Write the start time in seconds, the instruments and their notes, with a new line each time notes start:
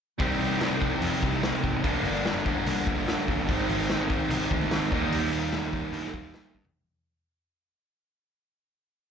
0.19 picked electric bass C2, distorted electric guitar C3 G3 C4 D#4 G4, kick, open hi-hat
0.40 picked electric bass C2, open hi-hat
0.61 snare, open hi-hat
0.70 picked electric bass C2
0.82 kick, open hi-hat
1.01 picked electric bass F2, open hi-hat
1.23 picked electric bass C2, kick, open hi-hat
1.43 snare, open hi-hat
1.64 picked electric bass G#1, kick, open hi-hat
1.83 picked electric bass G1, distorted electric guitar G2 D3 G3 A#3 D4, kick, open hi-hat
2.04 picked electric bass G1, open hi-hat
2.25 snare, open hi-hat
2.35 picked electric bass G1
2.46 kick, open hi-hat
2.66 picked electric bass C2, open hi-hat
2.87 picked electric bass G1, kick, open hi-hat
3.08 snare, open hi-hat
3.28 picked electric bass G1, kick, open hi-hat
3.49 picked electric bass G#1, distorted electric guitar G#2 D#3 G#3 C4 D#4, kick, open hi-hat
3.69 picked electric bass G#1, open hi-hat
3.90 snare, open hi-hat
3.99 picked electric bass G#1
4.10 kick, open hi-hat
4.30 picked electric bass C2, open hi-hat
4.51 picked electric bass D2, kick, open hi-hat
4.71 snare, open hi-hat
4.92 picked electric bass D#2, distorted electric guitar D#3 G3 A#3 D#4, kick, open hi-hat
5.12 picked electric bass D#2, open hi-hat
5.32 picked electric bass D#2, open hi-hat
5.53 snare, open hi-hat
5.62 picked electric bass D#2
5.73 kick, open hi-hat
5.92 picked electric bass G2, open hi-hat
6.04 snare
6.13 picked electric bass D#2, kick, open hi-hat
6.34 snare, open hi-hat
6.54 picked electric bass G2, kick
6.65 floor tom